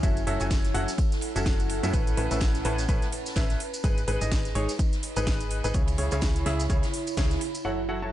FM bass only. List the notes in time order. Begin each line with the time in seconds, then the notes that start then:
0.03 F#1
0.27 F#1
0.41 F#1
0.75 F#1
1.36 F#1
1.83 F#2
1.94 A1
2.17 A1
2.31 A1
2.65 A1
2.89 A1
3.36 A1
3.84 G#1
4.08 G#1
4.21 G#1
4.55 G#1
5.17 G#1
5.64 G#1
5.74 C#2
5.98 C#2
6.12 C#2
6.46 C#2
6.70 C#2
7.17 C#2
7.65 F#1